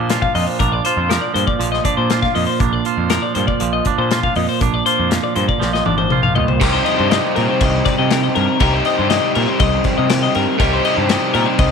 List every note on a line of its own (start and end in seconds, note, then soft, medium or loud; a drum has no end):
0.00 0.26 A#2 medium
0.00 0.35 A#2 medium
0.00 1.10 F3 medium
0.00 0.61 D4 medium
0.00 0.10 F4 medium
0.00 0.22 C5 medium
0.10 0.86 F4 medium
0.10 snare loud
0.10 closed hi-hat medium
0.22 0.35 F5 medium
0.22 kick medium
0.35 0.44 F2 medium
0.35 1.33 A#2 medium
0.35 0.47 D#5 medium
0.35 open hi-hat medium
0.47 0.59 C5 medium
0.59 0.79 A#1 medium
0.59 1.85 D4 medium
0.59 0.72 A#4 medium
0.59 kick loud
0.59 closed hi-hat medium
0.72 0.84 D5 medium
0.85 2.11 F4 medium
0.85 1.10 C5 medium
0.85 closed hi-hat medium
0.97 1.16 F2 medium
1.10 1.59 F3 medium
1.10 1.22 A#4 medium
1.10 snare loud
1.10 closed hi-hat medium
1.21 1.34 D5 medium
1.34 1.45 G2 medium
1.34 2.35 A#2 medium
1.34 1.47 C5 medium
1.34 closed hi-hat medium
1.47 1.71 D5 medium
1.47 kick medium
1.60 1.79 A#1 medium
1.60 3.10 F3 medium
1.60 closed hi-hat medium
1.72 1.84 D#5 medium
1.72 snare soft
1.85 2.60 D4 medium
1.85 1.97 D5 medium
1.85 kick medium
1.85 closed hi-hat medium
1.97 2.26 A#2 medium
1.97 2.22 C5 medium
2.10 2.86 F4 medium
2.10 snare loud
2.10 closed hi-hat medium
2.22 2.35 F5 medium
2.22 kick medium
2.22 snare soft
2.35 2.45 F2 medium
2.35 3.36 A#2 medium
2.35 2.46 D#5 medium
2.35 open hi-hat medium
2.47 2.60 C5 medium
2.60 2.80 A#1 medium
2.60 3.86 D4 medium
2.60 2.73 A#4 medium
2.60 kick loud
2.60 closed hi-hat medium
2.73 2.85 D5 medium
2.85 4.10 F4 medium
2.85 3.11 C5 medium
2.85 closed hi-hat medium
2.97 3.17 F2 medium
3.10 3.60 F3 medium
3.10 3.23 A#4 medium
3.10 snare loud
3.10 closed hi-hat medium
3.22 3.35 D5 medium
3.35 3.46 G2 medium
3.35 4.33 A#2 medium
3.35 3.47 C5 medium
3.35 closed hi-hat medium
3.47 3.73 D5 medium
3.47 kick medium
3.60 3.80 A#1 medium
3.60 5.09 F3 medium
3.60 closed hi-hat medium
3.73 3.85 D#5 medium
3.85 4.34 D4 medium
3.85 3.98 D5 medium
3.85 kick medium
3.85 closed hi-hat medium
3.98 4.27 A#2 medium
3.98 4.23 C5 medium
4.11 4.33 F4 medium
4.11 snare loud
4.11 closed hi-hat medium
4.23 4.36 F5 medium
4.23 kick medium
4.35 4.46 F2 medium
4.35 5.34 A#2 medium
4.35 4.48 D#5 medium
4.35 open hi-hat medium
4.49 4.61 C5 medium
4.61 4.80 A#1 medium
4.61 5.85 D4 medium
4.61 4.74 A#4 medium
4.61 kick loud
4.61 closed hi-hat medium
4.74 4.85 D5 medium
4.86 6.11 F4 medium
4.86 5.11 C5 medium
4.86 closed hi-hat medium
4.99 5.18 F2 medium
5.10 5.59 F3 medium
5.10 5.23 A#4 medium
5.10 snare loud
5.10 closed hi-hat medium
5.24 5.36 D5 medium
5.35 5.46 G2 medium
5.35 6.33 A#2 medium
5.35 5.48 C5 medium
5.35 closed hi-hat medium
5.48 5.73 D5 medium
5.48 kick medium
5.60 5.80 A#1 medium
5.60 8.35 F3 medium
5.60 snare medium
5.73 5.86 D#5 medium
5.73 snare medium
5.86 6.09 G#1 medium
5.86 6.33 D4 medium
5.86 5.97 D5 medium
5.86 high tom medium
5.98 6.23 C5 medium
5.98 high tom medium
6.10 6.34 A#1 medium
6.10 6.34 F4 medium
6.10 mid tom medium
6.23 6.35 F5 medium
6.23 mid tom medium
6.35 6.59 C2 medium
6.35 6.58 A#2 medium
6.35 6.48 D#5 medium
6.35 floor tom medium
6.48 6.61 C5 medium
6.48 floor tom medium
6.60 6.80 C2 medium
6.60 8.59 C3 medium
6.60 8.60 G3 loud
6.60 8.61 C4 loud
6.60 8.62 D#4 loud
6.60 8.62 G4 loud
6.60 6.73 A#4 medium
6.60 kick loud
6.60 crash loud
6.60 crash medium
6.73 6.85 C5 medium
6.85 6.98 D#5 medium
6.85 crash medium
6.98 7.18 G2 loud
6.98 7.10 C5 medium
7.10 7.35 D#5 medium
7.10 snare loud
7.10 crash medium
7.36 7.46 A#2 medium
7.36 7.49 A#4 medium
7.36 crash medium
7.49 7.61 C5 medium
7.61 7.80 C2 loud
7.61 7.85 D#5 medium
7.61 kick loud
7.61 crash medium
7.85 7.98 D5 medium
7.85 kick medium
7.85 snare soft
7.85 crash medium
7.98 8.27 C3 medium
7.98 8.11 D#5 medium
8.10 8.23 A#4 medium
8.10 snare loud
8.10 crash medium
8.23 8.35 D#5 medium
8.35 8.46 G2 loud
8.35 8.59 A#4 medium
8.35 crash medium
8.60 8.80 C2 medium
8.60 10.58 C3 medium
8.60 10.59 G3 loud
8.60 10.60 C4 medium
8.60 10.61 D#4 loud
8.60 10.61 G4 loud
8.60 8.74 A#4 loud
8.60 kick loud
8.60 crash medium
8.74 8.85 C5 medium
8.85 8.98 D#5 medium
8.85 crash medium
8.98 9.18 G2 loud
8.98 9.09 C5 medium
9.10 9.35 D#5 medium
9.10 snare loud
9.10 crash medium
9.35 9.45 A#2 loud
9.35 9.48 A#4 medium
9.35 crash medium
9.48 9.59 C5 medium
9.60 9.79 C2 loud
9.60 9.85 D#5 loud
9.60 kick loud
9.60 crash loud
9.84 9.97 D5 medium
9.84 kick medium
9.84 snare soft
9.84 crash medium
9.98 10.27 C3 medium
9.98 10.10 D#5 medium
10.09 10.22 A#4 medium
10.09 snare loud
10.09 crash loud
10.23 10.35 D#5 medium
10.35 10.45 G2 medium
10.35 10.59 A#4 medium
10.35 crash medium
10.59 10.79 C2 loud
10.59 11.71 C3 medium
10.59 11.71 G3 loud
10.59 11.71 C4 loud
10.59 11.71 D#4 loud
10.59 11.71 G4 loud
10.59 10.72 A#4 loud
10.59 kick loud
10.59 crash medium
10.72 10.85 C5 medium
10.85 10.97 D#5 medium
10.85 crash medium
10.97 11.16 G2 loud
10.97 11.10 C5 medium
11.09 11.33 D#5 medium
11.09 snare loud
11.09 crash medium
11.34 11.44 A#2 loud
11.34 11.46 A#4 medium
11.34 crash medium
11.46 11.59 C5 medium
11.59 11.71 C2 loud
11.59 11.71 D#5 medium
11.59 kick loud
11.59 crash medium